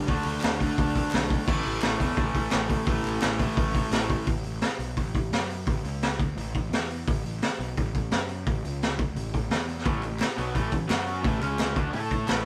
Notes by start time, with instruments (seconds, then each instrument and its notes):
0.06 picked electric bass D2, overdriven electric guitar D3 A3 D4, kick, open hi-hat
0.24 picked electric bass D2, clap, open hi-hat
0.41 picked electric bass D2, snare, clap, open hi-hat
0.59 overdriven electric guitar D3 A3 D4, kick, open hi-hat
0.78 picked electric bass D2, kick, open hi-hat
0.96 kick, open hi-hat
1.11 picked electric bass B1, snare, clap, open hi-hat
1.30 kick, open hi-hat
1.46 picked electric bass A1, overdriven electric guitar A2 E3 A3, kick, crash
1.64 picked electric bass A1, clap, open hi-hat
1.82 picked electric bass A1, snare, clap, open hi-hat
1.98 picked electric bass E2, overdriven electric guitar A2 E3 A3, kick, open hi-hat
2.17 picked electric bass A1, kick, open hi-hat
2.34 picked electric bass A1, kick, open hi-hat
2.51 picked electric bass A1, snare, clap, open hi-hat
2.69 kick, open hi-hat
2.85 picked electric bass A1, overdriven electric guitar A2 E3 A3, kick, open hi-hat
3.05 picked electric bass A1, clap, open hi-hat
3.21 picked electric bass A1, snare, clap, open hi-hat
3.38 overdriven electric guitar A2 E3 A3, kick, open hi-hat
3.57 picked electric bass A1, kick, open hi-hat
3.75 kick, open hi-hat
3.91 picked electric bass A1, snare, clap, open hi-hat
4.10 kick, open hi-hat
4.26 picked electric bass A1, kick, open hi-hat
4.43 picked electric bass A1, open hi-hat
4.61 snare, open hi-hat
4.79 picked electric bass B1, open hi-hat
4.97 picked electric bass A1, kick, open hi-hat
5.15 picked electric bass A1, kick, open hi-hat
5.32 picked electric bass F#2, snare, open hi-hat
5.50 open hi-hat
5.67 picked electric bass A1, kick, open hi-hat
5.84 picked electric bass C#2, open hi-hat
6.02 snare, open hi-hat
6.19 picked electric bass D2, kick, open hi-hat
6.37 picked electric bass A1, open hi-hat
6.55 picked electric bass A1, kick, open hi-hat
6.71 picked electric bass E2, snare, open hi-hat
6.90 open hi-hat
7.08 picked electric bass A1, kick, open hi-hat
7.25 picked electric bass A1, open hi-hat
7.42 snare, open hi-hat
7.59 picked electric bass B1, open hi-hat
7.77 picked electric bass A1, kick, open hi-hat
7.94 picked electric bass A1, kick, open hi-hat
8.11 picked electric bass F#2, snare, open hi-hat
8.29 open hi-hat
8.46 picked electric bass A1, kick, open hi-hat
8.64 picked electric bass C#2, open hi-hat
8.82 snare, open hi-hat
8.99 picked electric bass D2, kick, open hi-hat
9.16 picked electric bass A1, open hi-hat
9.34 picked electric bass A1, kick, open hi-hat
9.50 picked electric bass E2, snare, open hi-hat
9.69 open hi-hat
9.78 snare
9.85 picked electric bass A1, overdriven electric guitar A2 E3 A3, kick, open hi-hat
10.02 picked electric bass A1, overdriven electric guitar A2 E3, clap, open hi-hat
10.19 snare, clap, open hi-hat
10.37 picked electric bass B1, overdriven electric guitar B2 F#3 B3, open hi-hat
10.55 picked electric bass A1, overdriven electric guitar A2 E3 A3, kick, open hi-hat
10.71 picked electric bass A1, overdriven electric guitar A2 E3, kick, open hi-hat
10.88 picked electric bass F#2, overdriven electric guitar F#3 C#4 F#4, snare, clap, open hi-hat
11.07 open hi-hat
11.23 picked electric bass A1, overdriven electric guitar A2 E3 A3, kick, open hi-hat
11.40 picked electric bass C#2, overdriven electric guitar C#3 G#3 C#4, clap, open hi-hat
11.58 snare, clap, open hi-hat
11.76 picked electric bass D2, overdriven electric guitar D3 A3 D4, kick, open hi-hat
11.92 picked electric bass A2, overdriven electric guitar A3 E4 A4, open hi-hat
12.11 kick, open hi-hat
12.27 picked electric bass A1, overdriven electric guitar A2 E3 A3, snare, clap, open hi-hat